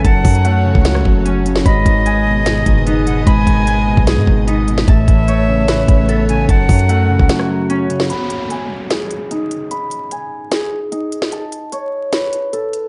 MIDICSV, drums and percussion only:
0, 0, Header, 1, 2, 480
1, 0, Start_track
1, 0, Tempo, 402685
1, 55, Time_signature, 4, 2, 24, 8
1, 15358, End_track
2, 0, Start_track
2, 0, Title_t, "Drums"
2, 54, Note_on_c, 9, 36, 127
2, 54, Note_on_c, 9, 42, 80
2, 173, Note_off_c, 9, 42, 0
2, 174, Note_off_c, 9, 36, 0
2, 294, Note_on_c, 9, 36, 96
2, 294, Note_on_c, 9, 42, 64
2, 295, Note_on_c, 9, 46, 83
2, 413, Note_off_c, 9, 36, 0
2, 414, Note_off_c, 9, 42, 0
2, 414, Note_off_c, 9, 46, 0
2, 414, Note_on_c, 9, 42, 62
2, 534, Note_off_c, 9, 42, 0
2, 534, Note_on_c, 9, 42, 78
2, 654, Note_off_c, 9, 42, 0
2, 895, Note_on_c, 9, 36, 95
2, 1012, Note_on_c, 9, 42, 91
2, 1014, Note_off_c, 9, 36, 0
2, 1014, Note_on_c, 9, 38, 120
2, 1132, Note_off_c, 9, 42, 0
2, 1133, Note_off_c, 9, 38, 0
2, 1133, Note_on_c, 9, 37, 103
2, 1253, Note_off_c, 9, 37, 0
2, 1255, Note_on_c, 9, 36, 98
2, 1374, Note_off_c, 9, 36, 0
2, 1497, Note_on_c, 9, 42, 74
2, 1616, Note_off_c, 9, 42, 0
2, 1737, Note_on_c, 9, 42, 76
2, 1853, Note_on_c, 9, 38, 103
2, 1857, Note_off_c, 9, 42, 0
2, 1973, Note_off_c, 9, 38, 0
2, 1974, Note_on_c, 9, 36, 124
2, 1974, Note_on_c, 9, 42, 81
2, 2093, Note_off_c, 9, 42, 0
2, 2094, Note_off_c, 9, 36, 0
2, 2214, Note_on_c, 9, 36, 97
2, 2215, Note_on_c, 9, 42, 78
2, 2333, Note_off_c, 9, 36, 0
2, 2334, Note_off_c, 9, 42, 0
2, 2455, Note_on_c, 9, 42, 71
2, 2574, Note_off_c, 9, 42, 0
2, 2933, Note_on_c, 9, 42, 91
2, 2935, Note_on_c, 9, 38, 118
2, 3052, Note_off_c, 9, 42, 0
2, 3054, Note_off_c, 9, 38, 0
2, 3174, Note_on_c, 9, 42, 80
2, 3175, Note_on_c, 9, 36, 99
2, 3293, Note_off_c, 9, 42, 0
2, 3294, Note_off_c, 9, 36, 0
2, 3418, Note_on_c, 9, 42, 74
2, 3537, Note_off_c, 9, 42, 0
2, 3658, Note_on_c, 9, 42, 73
2, 3777, Note_off_c, 9, 42, 0
2, 3895, Note_on_c, 9, 36, 127
2, 3895, Note_on_c, 9, 42, 82
2, 4014, Note_off_c, 9, 36, 0
2, 4014, Note_off_c, 9, 42, 0
2, 4134, Note_on_c, 9, 36, 95
2, 4135, Note_on_c, 9, 42, 75
2, 4253, Note_off_c, 9, 36, 0
2, 4255, Note_off_c, 9, 42, 0
2, 4375, Note_on_c, 9, 42, 81
2, 4494, Note_off_c, 9, 42, 0
2, 4735, Note_on_c, 9, 36, 92
2, 4853, Note_on_c, 9, 42, 92
2, 4855, Note_off_c, 9, 36, 0
2, 4855, Note_on_c, 9, 38, 123
2, 4972, Note_off_c, 9, 42, 0
2, 4974, Note_off_c, 9, 38, 0
2, 5095, Note_on_c, 9, 36, 97
2, 5214, Note_off_c, 9, 36, 0
2, 5337, Note_on_c, 9, 42, 76
2, 5456, Note_off_c, 9, 42, 0
2, 5577, Note_on_c, 9, 42, 74
2, 5694, Note_on_c, 9, 38, 104
2, 5697, Note_off_c, 9, 42, 0
2, 5813, Note_off_c, 9, 38, 0
2, 5815, Note_on_c, 9, 36, 127
2, 5815, Note_on_c, 9, 42, 80
2, 5934, Note_off_c, 9, 36, 0
2, 5934, Note_off_c, 9, 42, 0
2, 6054, Note_on_c, 9, 36, 96
2, 6055, Note_on_c, 9, 42, 81
2, 6173, Note_off_c, 9, 36, 0
2, 6174, Note_off_c, 9, 42, 0
2, 6295, Note_on_c, 9, 42, 73
2, 6414, Note_off_c, 9, 42, 0
2, 6773, Note_on_c, 9, 42, 91
2, 6775, Note_on_c, 9, 38, 116
2, 6892, Note_off_c, 9, 42, 0
2, 6894, Note_off_c, 9, 38, 0
2, 7014, Note_on_c, 9, 42, 81
2, 7015, Note_on_c, 9, 36, 99
2, 7133, Note_off_c, 9, 42, 0
2, 7134, Note_off_c, 9, 36, 0
2, 7257, Note_on_c, 9, 42, 74
2, 7376, Note_off_c, 9, 42, 0
2, 7498, Note_on_c, 9, 42, 74
2, 7617, Note_off_c, 9, 42, 0
2, 7734, Note_on_c, 9, 42, 84
2, 7735, Note_on_c, 9, 36, 127
2, 7853, Note_off_c, 9, 42, 0
2, 7854, Note_off_c, 9, 36, 0
2, 7974, Note_on_c, 9, 36, 98
2, 7974, Note_on_c, 9, 42, 63
2, 7975, Note_on_c, 9, 46, 80
2, 8093, Note_off_c, 9, 36, 0
2, 8093, Note_off_c, 9, 42, 0
2, 8094, Note_off_c, 9, 46, 0
2, 8095, Note_on_c, 9, 42, 61
2, 8214, Note_off_c, 9, 42, 0
2, 8215, Note_on_c, 9, 42, 81
2, 8334, Note_off_c, 9, 42, 0
2, 8575, Note_on_c, 9, 36, 93
2, 8693, Note_on_c, 9, 42, 95
2, 8695, Note_off_c, 9, 36, 0
2, 8695, Note_on_c, 9, 38, 120
2, 8812, Note_off_c, 9, 42, 0
2, 8814, Note_off_c, 9, 38, 0
2, 8814, Note_on_c, 9, 37, 102
2, 8933, Note_off_c, 9, 37, 0
2, 9177, Note_on_c, 9, 42, 76
2, 9296, Note_off_c, 9, 42, 0
2, 9418, Note_on_c, 9, 42, 72
2, 9534, Note_on_c, 9, 38, 103
2, 9537, Note_off_c, 9, 42, 0
2, 9653, Note_off_c, 9, 38, 0
2, 9655, Note_on_c, 9, 42, 80
2, 9774, Note_off_c, 9, 42, 0
2, 9895, Note_on_c, 9, 42, 78
2, 10014, Note_off_c, 9, 42, 0
2, 10135, Note_on_c, 9, 42, 69
2, 10254, Note_off_c, 9, 42, 0
2, 10613, Note_on_c, 9, 42, 88
2, 10615, Note_on_c, 9, 38, 117
2, 10732, Note_off_c, 9, 42, 0
2, 10734, Note_off_c, 9, 38, 0
2, 10854, Note_on_c, 9, 42, 78
2, 10973, Note_off_c, 9, 42, 0
2, 11098, Note_on_c, 9, 42, 72
2, 11217, Note_off_c, 9, 42, 0
2, 11338, Note_on_c, 9, 42, 72
2, 11457, Note_off_c, 9, 42, 0
2, 11575, Note_on_c, 9, 42, 80
2, 11694, Note_off_c, 9, 42, 0
2, 11815, Note_on_c, 9, 42, 71
2, 11935, Note_off_c, 9, 42, 0
2, 12055, Note_on_c, 9, 42, 79
2, 12174, Note_off_c, 9, 42, 0
2, 12533, Note_on_c, 9, 42, 88
2, 12535, Note_on_c, 9, 38, 115
2, 12652, Note_off_c, 9, 42, 0
2, 12654, Note_off_c, 9, 38, 0
2, 13017, Note_on_c, 9, 42, 73
2, 13137, Note_off_c, 9, 42, 0
2, 13258, Note_on_c, 9, 42, 72
2, 13374, Note_on_c, 9, 38, 101
2, 13377, Note_off_c, 9, 42, 0
2, 13493, Note_off_c, 9, 38, 0
2, 13495, Note_on_c, 9, 42, 80
2, 13614, Note_off_c, 9, 42, 0
2, 13735, Note_on_c, 9, 42, 79
2, 13854, Note_off_c, 9, 42, 0
2, 13975, Note_on_c, 9, 42, 74
2, 14094, Note_off_c, 9, 42, 0
2, 14453, Note_on_c, 9, 42, 92
2, 14455, Note_on_c, 9, 38, 120
2, 14572, Note_off_c, 9, 42, 0
2, 14574, Note_off_c, 9, 38, 0
2, 14694, Note_on_c, 9, 42, 79
2, 14813, Note_off_c, 9, 42, 0
2, 14937, Note_on_c, 9, 42, 75
2, 15057, Note_off_c, 9, 42, 0
2, 15178, Note_on_c, 9, 42, 73
2, 15297, Note_off_c, 9, 42, 0
2, 15358, End_track
0, 0, End_of_file